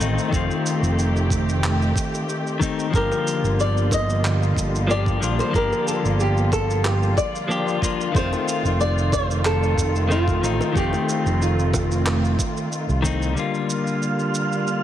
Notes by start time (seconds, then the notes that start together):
Already playing: D#3 A3 C4 F4
0.00 A1 D#3 A3 C4 D#4, shaker
0.18 shaker
0.29 F1 D#3 A3 G4, kick
0.34 C4 F4, shaker
0.51 shaker
0.66 shaker
0.82 F1, shaker
0.99 shaker
1.16 shaker
1.30 kick, shaker
1.49 shaker
1.64 clap, shaker
1.82 shaker
1.96 kick, shaker
2.14 shaker
2.29 shaker
2.47 shaker
2.60 D#3 A3 C4 D#4, kick, shaker
2.79 shaker
2.90 G1 D3 F3 G3 A#3 F4, kick
2.95 D3 G4 A#4, shaker
3.11 high bongo, shaker
3.27 shaker
3.44 G1, shaker
3.60 D5, shaker
3.77 shaker
3.91 D#5, kick, high bongo, shaker
4.10 shaker
4.25 clap, shaker
4.43 shaker
4.56 G1, kick, shaker
4.75 shaker
4.87 F3 A#3 D4 G4 D5, shaker
5.06 kick, shaker
5.20 A#1 F3 A#3 D4 F4, shaker
5.39 C5, high bongo, shaker
5.51 G1 F3 A#3, kick, shaker
5.55 D4 G4 A#4
5.72 high bongo, shaker
5.88 A4, shaker
6.05 G1, shaker
6.20 G4, shaker
6.37 shaker
6.52 A4, kick, high bongo, shaker
6.70 shaker
6.85 G4, clap, high bongo, shaker
7.03 shaker
7.17 D5, kick, shaker
7.35 shaker
7.48 F3 A#3 D4 G4, shaker
7.68 shaker
7.81 F3 A#3 D4 F4, kick, shaker
8.01 shaker
8.12 F1 D#3 A3 C4, kick
8.16 C4 F4 C5, shaker
8.33 high bongo, shaker
8.48 shaker
8.65 F1, shaker
8.81 D5, shaker
8.98 shaker
9.12 C5, kick, high bongo, shaker
9.31 shaker
9.45 A4, clap, shaker
9.63 shaker
9.78 F1, kick, shaker
9.95 shaker
10.09 D#3 A3 C4 F4, shaker
10.28 kick, shaker
10.41 A1 D#3 A3 C4 D#4, shaker
10.61 high bongo, shaker
10.72 F1 D#3 A3, kick
10.76 C4 F4 G4, shaker
10.93 high bongo, shaker
11.09 shaker
11.26 F1, shaker
11.42 F4, shaker
11.59 shaker
11.74 kick, high bongo, shaker
11.91 shaker
12.06 clap, high bongo, shaker
12.25 shaker
12.39 kick, shaker
12.57 shaker
12.72 shaker
12.89 C2, shaker
13.02 D#3 A3 C4 D#4, kick, shaker
13.22 shaker
13.33 D3 G3, shaker
13.37 D3 G3 A#3 F4 F6
13.54 shaker
13.70 shaker
13.87 shaker
14.02 shaker
14.19 shaker
14.34 shaker
14.52 shaker
14.67 shaker